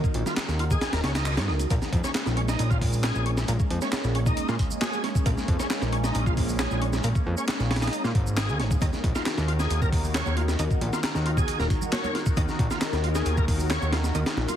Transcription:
Already playing: D#3 D#4 F#4 A#4
0.04 kick, shaker
0.14 A#1, closed hi-hat, muted conga
0.26 F4, snare, high conga, low conga, shaker
0.37 snare, clap, closed hi-hat, shaker
0.49 D#2, snare, shaker
0.59 F4, closed hi-hat
0.71 G#4, kick, muted conga, high conga, shaker
0.81 snare, closed hi-hat, shaker
0.93 D#1 A#4, snare, closed hi-hat, shaker
1.04 C#2 C#4, snare, closed hi-hat, muted conga, high conga
1.15 D#4, snare, closed hi-hat, low conga, shaker
1.26 D#5, clap, closed hi-hat, shaker
1.37 G#2 C#4, snare, closed hi-hat, high conga, low conga, shaker
1.48 C#2 D#4, snare
1.60 closed hi-hat, muted conga, shaker
1.70 A#1 G#3 A#3 C#4, kick, closed hi-hat, shaker
1.82 snare, shaker
1.93 F2, kick, closed hi-hat
2.04 C#4, snare, shaker
2.15 snare, clap, closed hi-hat, shaker
2.26 A#1, snare, shaker
2.37 C#4, closed hi-hat
2.48 D#4, snare, shaker
2.59 A#1, closed hi-hat, shaker
2.70 F4, kick, shaker
2.81 kick, open hi-hat
2.93 shaker
3.04 G#4, snare, clap, closed hi-hat, shaker
3.15 A#1, shaker
3.26 C#4, closed hi-hat
3.37 snare, shaker
3.48 A#1 A#3, closed hi-hat, shaker
3.59 kick, shaker
3.71 F2, closed hi-hat
3.82 C#4, snare, shaker
3.92 snare, clap, closed hi-hat, shaker
4.04 A#1, snare, shaker
4.15 C#4, closed hi-hat
4.26 D#4, kick, shaker
4.37 closed hi-hat, shaker
4.49 A#2 F4, snare, shaker
4.59 kick, closed hi-hat
4.71 shaker
4.82 G#4, snare, clap, closed hi-hat, shaker
4.93 shaker
5.04 C#4, snare, closed hi-hat
5.15 kick, shaker
5.26 A#1 A#3, kick, closed hi-hat, shaker
5.38 snare, shaker
5.48 F2, kick, closed hi-hat
5.60 C#4, snare, shaker
5.70 snare, clap, closed hi-hat, shaker
5.82 A#1, snare, shaker
5.93 C#4, closed hi-hat
6.04 D#4, snare, shaker
6.15 A#1, closed hi-hat, shaker
6.26 F4, kick, shaker
6.37 kick, open hi-hat
6.49 shaker
6.59 G#4, snare, clap, closed hi-hat, shaker
6.71 A#1, shaker
6.82 C#4, closed hi-hat
6.93 snare, shaker
7.04 A#1 A#3, closed hi-hat, shaker
7.15 kick, shaker
7.26 F2
7.37 C#4, shaker
7.48 snare, clap, closed hi-hat, shaker
7.60 A#1, snare, shaker
7.71 C#4, snare, closed hi-hat
7.76 snare, closed hi-hat
7.82 D#4, snare, closed hi-hat, shaker
7.88 snare, closed hi-hat
7.93 closed hi-hat, shaker
8.04 A#2 F4, snare, shaker
8.15 G#1, kick, closed hi-hat
8.27 shaker
8.37 G#4, snare, clap, closed hi-hat, shaker
8.49 D#2, shaker
8.59 G#1 C#4, snare, closed hi-hat
8.71 kick, shaker
8.81 D#2 D#3 D#4 F#4 A#4, kick, closed hi-hat, high conga, shaker
8.93 snare, shaker
9.04 A#1, kick, closed hi-hat, muted conga
9.15 F4, snare, high conga, shaker
9.26 snare, clap, closed hi-hat, shaker
9.37 D#2, snare, shaker
9.48 F4, closed hi-hat
9.59 G#4, snare, muted conga, high conga, shaker
9.70 D#2, closed hi-hat, shaker
9.82 A#4, kick, muted conga, low conga, shaker
9.93 kick, open hi-hat, high conga
10.04 shaker
10.15 C#5, snare, clap, closed hi-hat, shaker
10.26 D#2, high conga, shaker
10.37 F4, closed hi-hat
10.48 snare, muted conga, shaker
10.59 D#2 D#4, closed hi-hat, high conga, shaker
10.71 kick, shaker
10.81 A#1, closed hi-hat, muted conga
10.93 F4, snare, high conga, shaker
11.04 snare, clap, closed hi-hat, shaker
11.15 D#2, snare, shaker
11.26 F4, closed hi-hat
11.37 G#4, kick, high conga, shaker
11.48 closed hi-hat, shaker
11.59 D#1 A#4, snare, shaker
11.70 kick, closed hi-hat, muted conga, high conga
11.81 low conga, shaker
11.93 C#5, snare, clap, closed hi-hat, shaker
12.04 high conga, low conga, shaker
12.15 F4, snare, closed hi-hat
12.26 kick, muted conga, shaker
12.37 D#2 D#4, kick, closed hi-hat, high conga, shaker
12.48 snare, shaker
12.59 A#1, kick, closed hi-hat, muted conga
12.71 F4, snare, high conga, shaker
12.81 snare, clap, closed hi-hat, shaker
12.93 D#2, snare, shaker
13.04 F4, closed hi-hat
13.15 G#4, snare, muted conga, high conga, shaker
13.26 D#2, closed hi-hat, shaker
13.37 A#4, kick, muted conga, low conga, shaker
13.48 kick, open hi-hat, high conga
13.60 shaker
13.70 C#5, snare, clap, closed hi-hat, shaker
13.82 D#2, high conga, shaker
13.93 F4, snare, closed hi-hat
14.04 snare, muted conga, shaker
14.15 D#2 D#4, closed hi-hat, high conga, shaker
14.26 snare, closed hi-hat, shaker
14.37 A#1, snare, muted conga
14.48 F4, closed hi-hat, high conga, low conga, shaker

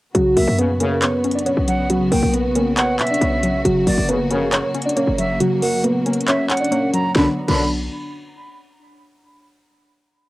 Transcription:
0.15 B1 C#3 F#3 B3 F#4, closed hi-hat
0.36 B1 F#3 A#3 A#4 E5, open hi-hat
0.48 F#2
0.58 F#2 C#3 B3 B4, closed hi-hat
0.80 F#2 C#3 A#3 C#4 A#4, closed hi-hat
1.02 B3 B4 C#5, clap, closed hi-hat
1.24 C#4, closed hi-hat
1.31 D5, closed hi-hat
1.36 D4, closed hi-hat
1.46 B3 C#4 C#5, closed hi-hat
1.57 B1
1.68 F#3 F#5, closed hi-hat
1.90 C#3 F#3 F#4, closed hi-hat
2.12 B1 F#3 A#3 A#4 G5, open hi-hat
2.23 B1
2.34 B3 B4, closed hi-hat
2.55 A#3 C#4 A#4, closed hi-hat
2.77 B3 B4 C#5 F#5, clap, closed hi-hat
2.99 B2 C#4 E5, clap, closed hi-hat
3.07 D5, closed hi-hat
3.11 D4, closed hi-hat
3.21 B1 B3 C#4 C#5, closed hi-hat
3.43 F#3, closed hi-hat
3.65 F#1 C#3 F#3 A#3 F#4, closed hi-hat
3.87 F#1 F#3 A#3 A#4 D5, open hi-hat
3.98 F#1
4.09 A#1 F#2 C#3 A#3 B3 B4, closed hi-hat
4.31 A#1 F#2 C#3 A#3 C#4 A#4, closed hi-hat
4.52 C#4 C#5, clap, closed hi-hat
4.75 C#4, closed hi-hat
4.82 D5, closed hi-hat
4.86 D4, closed hi-hat
4.96 A#3 C#4 C#5, closed hi-hat
5.07 F#1
5.18 F#3 E5, closed hi-hat
5.40 C#3 F#3 F#4, closed hi-hat
5.62 F#3 A#3 A#4 F#5, open hi-hat
5.84 A#3 B3 B4, closed hi-hat
6.06 A#3 C#4 A#4, closed hi-hat
6.13 closed hi-hat
6.21 closed hi-hat
6.28 C#4 C#5 E5, clap, closed hi-hat
6.50 C#4 F#5, clap, closed hi-hat
6.57 D5, closed hi-hat
6.61 D4, closed hi-hat
6.71 A#3 C#4 C#5, closed hi-hat
6.93 F#3 A#5, closed hi-hat
7.15 B1 F#2 D3 F#3 B3 D4 F#4 B5, snare
7.48 B1 F#2 D3 F#3 B3 D4 B5, crash

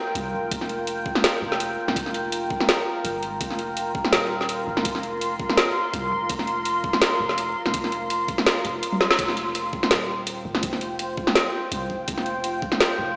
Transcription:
Already playing: F4 A#4 G5
0.15 C2, closed hi-hat
0.33 F1
0.51 F1, kick, closed hi-hat
0.61 snare
0.69 closed hi-hat
0.87 closed hi-hat
1.06 kick
1.15 snare
1.24 snare, closed hi-hat
1.42 F1
1.52 snare
1.60 closed hi-hat
1.88 D#1, snare
1.96 F1, kick, closed hi-hat
2.06 snare
2.14 closed hi-hat
2.32 closed hi-hat
2.50 kick
2.60 snare
2.69 snare, closed hi-hat
3.04 G1, closed hi-hat
3.23 G#1, closed hi-hat
3.41 F1 C6, kick, closed hi-hat
3.50 snare
3.59 closed hi-hat
3.77 closed hi-hat
3.95 kick
4.05 snare
4.13 D#1, snare, closed hi-hat
4.41 snare
4.49 closed hi-hat
4.67 G1
4.77 snare
4.85 F1, kick, closed hi-hat
4.95 snare
5.03 closed hi-hat
5.21 closed hi-hat
5.40 kick
5.50 snare
5.57 snare, closed hi-hat
5.93 C2, closed hi-hat
6.12 F1
6.29 F1, kick, closed hi-hat
6.39 snare
6.47 closed hi-hat
6.65 closed hi-hat
6.84 kick
6.93 snare
7.02 snare, closed hi-hat
7.20 F1
7.29 snare
7.38 closed hi-hat
7.66 D#1, snare
7.74 F1, kick, closed hi-hat
7.84 snare
7.92 closed hi-hat
8.10 closed hi-hat
8.28 kick, closed hi-hat
8.38 snare
8.46 snare, closed hi-hat
8.65 F1, closed hi-hat
8.83 closed hi-hat
8.92 high tom
9.01 snare
9.11 snare
9.19 F1 F4 C5 G5, kick, closed hi-hat
9.28 snare
9.37 closed hi-hat
9.55 closed hi-hat
9.73 kick
9.83 snare
9.91 D#1, snare, closed hi-hat
10.27 closed hi-hat
10.45 G1
10.55 snare
10.63 F1, kick, closed hi-hat
10.73 snare
10.81 closed hi-hat
10.99 closed hi-hat
11.17 kick
11.27 snare
11.35 snare, closed hi-hat
11.72 C2, closed hi-hat
11.90 F1, kick
12.08 F1, kick, closed hi-hat
12.18 snare
12.26 closed hi-hat
12.44 closed hi-hat
12.62 kick
12.72 snare
12.80 snare, closed hi-hat
12.99 F1

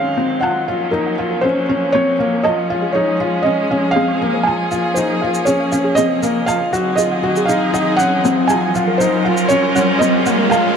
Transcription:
Already playing: D#3 F#3 G#3 C4 C#4 F5
0.17 C4 C6
0.41 F4 F#5, low woodblock
0.67 F3 A#3 C#4 F4 F#5
0.91 D#4 A#4
1.06 F#5
1.18 F4 F#5
1.31 A#4
1.41 C#4 A#4 C5
1.69 C#4 C#6
1.92 C4 C#5
2.19 A#3 F#5
2.43 F4 A#4 D#5, low woodblock
2.57 F#5
2.70 G#3 F4 G#4 F5
2.82 G#4
2.93 D#4 G#4 C#5
3.21 F4 C6
3.42 C#4 D#5
3.71 C#4 F5
3.91 F5
3.96 C4 G#4
4.08 C#6
4.22 A#3
4.33 C5
4.43 F4 G#5, low woodblock
4.71 A#3 F4 F5, riser, shaker
4.94 D#4 C5, shaker
5.22 F4 F5
5.34 shaker
5.45 C#4 G#4 C#5, shaker
5.60 F5
5.72 C#4 F5, shaker
5.84 G#4
5.95 C4 G#4 D#5, shaker
6.23 A#3 F5, shaker
6.46 F4 F5, low woodblock, shaker
6.73 F#3 C4 D#4 F#4 G#4 F#5, shaker
6.96 F4 G#4 D#5, shaker
7.11 F#5
7.23 F#4 F#5
7.36 G#4, shaker
7.45 D#4 G#4 F5, shaker
7.74 D#4 F#5, shaker
7.97 C#4 F#5, shaker
8.25 C4 F#5, shaker
8.47 F4 G#4 G#5, low woodblock, shaker
8.63 F#5
8.74 C#4 F4 A#4 F#5, shaker
8.87 A#4
8.98 D#4 A#4 C5, shaker
9.25 F4 F#5
9.37 shaker
9.48 C#4 C#5, shaker
9.75 C#4 F#5, shaker
9.99 C4 A#4 D#5, shaker
10.13 F#5
10.26 A#3 F#5, shaker
10.38 A#4
10.50 F4 A#4 F5, low woodblock, shaker

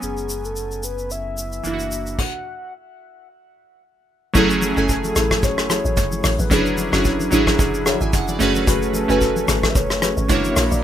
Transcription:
Already playing: F#3 B3 C#4 G#5
0.03 F#1 G#4, shaker
0.17 shaker
0.29 shaker
0.45 A4, shaker
0.56 shaker
0.71 shaker
0.83 B4, shaker
0.98 shaker
1.10 E5, shaker
1.38 shaker
1.52 shaker
1.63 F#1 E3 A#3 D4 E4, shaker
1.74 F#4
1.79 shaker
1.92 shaker
2.06 shaker
2.18 F#5, kick, crash
4.34 F#1 F#3 A3 C#4 E4 G#4 A4 G#5, kick, low conga, shaker
4.50 shaker
4.62 A4, high conga, shaker
4.75 F#1 F#3 A3 C#4 E4 A4 G#5, shaker
4.89 kick, shaker
5.04 high conga, shaker
5.16 A1 E4 G#4 A4, cross-stick, low conga, shaker
5.31 kick, cross-stick, high conga, shaker
5.43 F#1 C#5, kick, shaker
5.58 cross-stick, shaker
5.70 E4 G#4 A4, cross-stick, high conga, shaker
5.85 A1, shaker
5.97 F#1, kick, mid tom, low conga, shaker
6.12 high conga, shaker
6.24 A1 C#5, cross-stick, open hi-hat, low conga, shaker
6.39 A1 B4, high conga, shaker
6.50 F#1 D3 F#3 C#4 D4 E4 F#4 G#4 C#5, kick, hi-hat pedal, low conga, shaker
6.66 shaker
6.78 high conga, shaker
6.92 F#1 F#3 C#4 D4 E4 F#4 G#4 C#5, cross-stick, shaker
7.05 kick, shaker
7.20 high conga, shaker
7.31 G#1 F#3 C#4 D4 E4 F#4 G#4 C#5, low conga, shaker
7.47 kick, cross-stick, high conga, shaker
7.59 F#1, kick, shaker
7.74 shaker
7.86 D4 F#4 G#4 C#5 E5, cross-stick, high conga, shaker
8.01 G#1 G#5, shaker
8.13 F#1 F#5, kick, mid tom, low conga, shaker
8.28 D5, high conga, shaker
8.39 F#1 A3 C#4 F#4 G#4 B4, open hi-hat, low conga, shaker
8.55 high conga, shaker
8.67 F#1 C#4 F#4 G#4 B4, kick, hi-hat pedal, low conga, shaker
8.82 shaker
8.94 A4, high conga, shaker
9.08 F#1 A3 C#4 F#4 B4 G#5, shaker
9.21 kick, shaker
9.36 high conga, shaker
9.48 G#1 C#4 F#4 G#4 B4, cross-stick, low conga, shaker
9.63 kick, cross-stick, high conga, shaker
9.70 E5
9.75 F#1 C#5, kick, shaker
9.90 cross-stick, shaker
10.02 C#4 F#4 G#4 B4, cross-stick, high conga, shaker
10.17 G#1, shaker
10.28 F#1 F#3 G#3 A#3 D4 E4 F#4 C#5, kick, mid tom, low conga, shaker
10.35 A#3
10.44 high conga, shaker
10.56 A#1, cross-stick, open hi-hat, low conga, shaker
10.71 A#1 D5, high conga, shaker

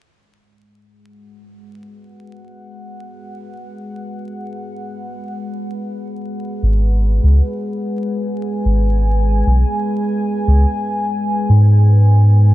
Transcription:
0.13 G#3
0.38 G#4
0.70 F#5
1.00 B4
6.63 G#1
7.23 C#2
7.53 G#5
8.65 G#1
9.46 B1
10.48 C#2
11.49 G#2

